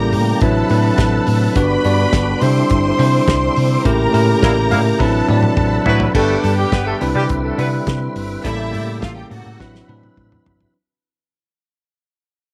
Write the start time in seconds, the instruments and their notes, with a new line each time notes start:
Already playing: fingered electric bass A1, tonewheel organ C#3 G3 A#3 G4, tine electric piano G3 A#3 C#4 E4 A4, string section A#4 A#5
0.12 fingered electric bass A2, open hi-hat
0.41 fingered electric bass A1, tonewheel organ C3 F#3 E4 B4, tine electric piano F#3 C4 D4 E4 B4, string section A4 A5, kick, closed hi-hat
0.69 fingered electric bass A2, tine electric piano F#3 C4 D4 E4 B4, open hi-hat
0.98 fingered electric bass A1, kick, snare, closed hi-hat
1.27 fingered electric bass A2, open hi-hat
1.55 fingered electric bass G1, tonewheel organ D3 G3 D4 F#4, tine electric piano G3 B3 D4 F#4 B4, string section B4 B5, kick, closed hi-hat
1.84 fingered electric bass G2, tine electric piano G3 B3 D4 F#4 D5, open hi-hat
2.13 fingered electric bass G1, kick, snare, closed hi-hat
2.41 fingered electric bass C3, tine electric piano G3 C4 D4 E4 C5, tonewheel organ C4 E4, string section C5 C6, open hi-hat
2.70 fingered electric bass G1, kick, closed hi-hat
2.98 fingered electric bass C3, tine electric piano G3 C4 D4 E4 C5, open hi-hat
3.27 fingered electric bass C2, kick, snare, closed hi-hat
3.56 fingered electric bass C3, open hi-hat
3.84 fingered electric bass A1, tonewheel organ A#2 C#3 A3 G4, tine electric piano A3 C#4 E4 G4 A#4, string section A#4 A#5, kick, closed hi-hat
4.13 fingered electric bass A2, tine electric piano A3 C#4 E4 G4 A#4, open hi-hat
4.43 fingered electric bass A1, horn section G3 A#3 E4 A#4, kick, snare, closed hi-hat
4.71 fingered electric bass A2, horn section G3 A#3 E4 A#4, open hi-hat
4.99 fingered electric bass A1, tonewheel organ C3 F#3 E4 B4, tine electric piano F#3 C4 D4 E4 B4, string section A4 A5, kick, high tom
5.29 fingered electric bass A2, tine electric piano E3 C4 D4 E4 D5, mid tom
5.35 tine electric piano F#3
5.43 mid tom
5.57 fingered electric bass A1, kick, mid tom
5.86 fingered electric bass A2, horn section F#3 B3 E4 B4, floor tom
6.00 floor tom
6.14 fingered electric bass G1, tonewheel organ D3 G3 G4 B4, tine electric piano G3 B3 D4 G4 B4, horn section A3 A4, kick, crash
6.42 fingered electric bass G2, string section A4 A5, open hi-hat
6.57 horn section G3 G4, string section G4 G5
6.72 fingered electric bass G1, horn section B3 B4, kick, snare, closed hi-hat
6.87 horn section A3 A4
7.00 fingered electric bass C2, tine electric piano G3 C4 D4 E4 B4, tonewheel organ C4 E4, open hi-hat
7.15 fingered electric bass C3, horn section G3 G4
7.29 fingered electric bass C2, kick, closed hi-hat
7.44 horn section A3 A4
7.58 fingered electric bass C3, tine electric piano G3 C4 D4 E4 B4, horn section B3 B4, open hi-hat
7.87 fingered electric bass C3, kick, snare, closed hi-hat
8.16 fingered electric bass G1, open hi-hat
8.44 fingered electric bass A1, tonewheel organ C#3 A#3 G4 A4, tine electric piano G3 A#3 C#4 E4 A4, string section E4 E5, kick, closed hi-hat
8.73 fingered electric bass A2, open hi-hat
9.01 fingered electric bass A1, string section F4 F5, kick, snare, closed hi-hat
9.15 string section G4 G5
9.30 fingered electric bass A2, string section F#4 F#5, open hi-hat
9.45 fingered electric bass A2
9.60 fingered electric bass A1, tonewheel organ C3 F#3 E4 B4, tine electric piano F#3 C4 D4 E4 B4, kick, snare
9.75 snare
9.88 fingered electric bass A2, tine electric piano E3 C4 D4 E4 B4, high tom
9.95 tine electric piano F#3
10.03 high tom
10.17 fingered electric bass A2, kick, mid tom
10.32 mid tom
10.46 fingered electric bass G1, floor tom
10.61 floor tom